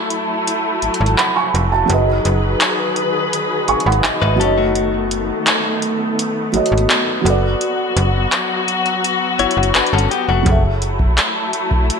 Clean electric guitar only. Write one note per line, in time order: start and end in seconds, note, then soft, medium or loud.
4.22 4.39 D#4 medium
4.22 4.39 B4 medium
4.40 4.57 C#4 medium
4.40 4.57 A4 medium
4.58 5.61 A3 medium
4.58 5.61 F#4 medium
9.39 9.74 E4 medium
9.39 9.73 C#5 medium
9.75 9.92 D4 medium
9.75 9.92 B4 medium
9.93 10.10 C#4 medium
9.93 10.10 A4 medium
10.11 10.28 B3 medium
10.11 10.28 G4 medium
10.29 10.63 A3 medium
10.29 10.63 F#4 medium